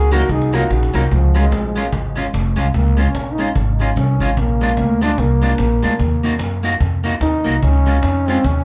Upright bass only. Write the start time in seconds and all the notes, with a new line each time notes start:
Already playing: C#2
0.29 C2
0.70 A#1
0.94 C2
1.12 C#2
1.51 A#1
1.93 G#1
2.33 F1
2.58 C2
2.75 C#2
3.15 A#1
3.56 G#1
3.96 C2
4.20 G#1
4.38 A#1
4.78 D2
5.18 C2
5.60 A#1
5.83 D2
6.00 D#2
6.42 F#2
6.81 F2
7.21 D#2
7.46 C2
7.63 C#2
8.03 F2
8.45 D#2